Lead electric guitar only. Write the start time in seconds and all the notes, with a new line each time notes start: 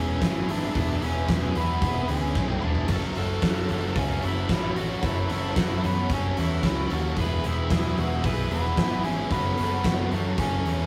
Already playing: C#4
0.00 C#5
0.51 D4 D5
1.04 C#4 C#5
1.57 B3 B4
2.10 C#4 C#5
2.64 D4 D5
2.91 A4 A5
3.18 A4 A5
3.98 C#4 C#5
4.25 E4 E5
4.77 F#4 F#5
5.04 E4 E5
5.32 E4 E5
5.85 B3 B4
6.13 C#4 C#5
6.40 E4 E5
6.93 F#4 F#5
7.20 B4 B5
7.47 E4 E5
8.00 F#4 F#5
8.25 B4 B5
8.52 B3 B4
9.04 C#4 C#5
9.32 B3 B4
10.39 C#4 C#5